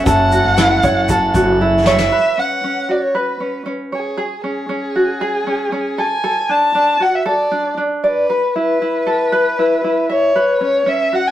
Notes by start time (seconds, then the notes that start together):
Already playing: C#4 F#4 A4
0.04 F#1 F#3 C#4 E4 F#4 A4 E5 F#5, kick, shaker
0.32 F#4, shaker
0.45 F#1
0.57 E4, snare, shaker
0.83 F#1 C#5, kick, shaker
1.09 A4, kick, shaker
1.34 F#1 F#4, kick, shaker
1.61 E4
1.86 C#5 E5, snare
1.98 snare
2.12 B4
2.38 C#4 F#5
2.64 C#4
2.89 F#4 D5
3.04 C#5
3.15 B4
3.40 C#4
3.66 C#4
3.92 G#4 C#5
4.17 G#4
4.44 C#4 G#4
4.69 C#4
4.96 F#4
5.21 G#4
5.47 C#4
5.72 C#4
5.98 A4 G#5
6.24 A4
6.49 D4 A5
6.75 D4
7.00 F#4 F#5
7.15 E5
7.26 A4 D5
7.51 D4
7.77 D4
8.04 B4 D5
8.30 B4
8.56 E4 B4
8.82 E4
9.07 A4
9.32 B4
9.59 E4
9.84 E4
10.09 C#5 E5
10.36 B4
10.61 C#4 C#5
10.86 C#4 E5
11.13 F#4 F#5
11.28 G#5